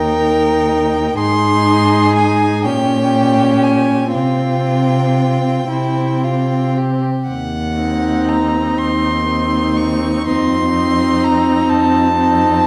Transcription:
Already playing: D#2 D#4 A#4 G5
1.18 G#2 D#4 G#4 C6
2.15 G#5
2.64 A#2 C#4 G4 G5
3.63 G#5
4.14 C3 C4 F4 G5
5.70 C3 C4 E4
6.24 F4
6.78 G4
7.28 D#2 F#5
7.80 C4 D#4
8.29 A#5
8.78 D#2 C6
9.28 C4 D#4
9.77 C#6
10.26 F2 C4 D#4 C6
10.76 C4 D#4
11.24 A#5
11.69 F2 A5
12.16 C4 D#4

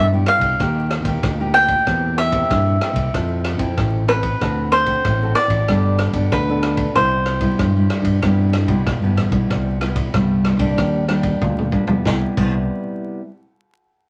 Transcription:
Already playing: G2
0.13 B3 E4 G4
0.26 F5, cross-stick, ride
0.39 C2, kick, ride
0.60 D#2 D#3 A#3 D#4 G4, kick, cross-stick, ride
0.91 cross-stick, ride
1.02 D#2 A#3 D#4, kick, ride
1.06 G4
1.23 D2 A#2, kick, cross-stick, ride
1.40 A#3 D#4 G4
1.54 G5, cross-stick, ride
1.68 kick, ride
1.86 E2 E3 A#3 C4 G4, kick, cross-stick, ride
2.18 E5, cross-stick, ride
2.32 A#3 C4 G4, kick, ride
2.50 G2 E3, kick, cross-stick, ride
2.81 A#3 C4 G4, cross-stick, ride
2.93 C2, kick, ride
3.14 F2 F3 C4 E4 A4, kick, cross-stick, ride
3.44 cross-stick, ride
3.57 F2 C4 E4 A4, kick, ride
3.77 A1 C3, kick, cross-stick, ride
4.08 C4 E4 A4 B4, cross-stick, ride
4.23 kick, ride
4.40 D2 D3 C4 F#4 A4, kick, cross-stick, ride
4.72 C5, cross-stick, ride
4.86 C4 F#4 A4, kick, ride
5.05 A1 A2, kick, cross-stick, ride
5.22 C4 F#4 A4
5.35 D5, cross-stick, ride
5.48 A1, kick, ride
5.68 G1 G3 B3 D4 A4, kick, cross-stick, ride
5.98 cross-stick, ride
6.11 G1 B3 D4 A4, kick, ride
6.32 D2 D3 B4, kick, cross-stick, ride
6.49 B3 D4 A4
6.63 cross-stick, ride
6.77 kick, ride
6.95 C2 C3 G3 E4 C5, kick, cross-stick, ride
7.26 cross-stick, ride
7.40 G3 B3 E4, kick, ride
7.59 G2, kick, cross-stick, ride
7.76 G3 E4
7.90 cross-stick, ride
8.02 G2, kick, ride
8.22 G2 C3 G3 B3 E4, kick, cross-stick, ride
8.53 cross-stick, ride
8.66 C2 G3 B3 E4, kick, ride
8.86 E1 G2, kick, cross-stick, ride
9.03 G1 G3 B3 E4
9.16 A1, cross-stick, ride
9.29 B1 G3 B3 E4, kick, ride
9.50 C2 C3, kick, cross-stick, ride
9.81 G3 B3 E4, cross-stick, ride
9.96 kick, ride
10.14 C2 G2 G3 B3 E4, kick, cross-stick, ride
10.45 cross-stick, ride
10.57 C2 G3 A#3 D4, kick, ride
10.77 D#2 D#3, kick, cross-stick, ride
11.08 G3 A#3 D4, cross-stick, ride
11.23 kick, ride
11.41 D2 A#2, kick, high tom
11.58 mid tom
11.71 G3 A#3 D4, kick
11.87 G3 B3 E4, floor tom
12.05 C2 C3 G3 B3 E4, kick, snare
12.37 C2 C3 G3 B3 E4, kick, crash

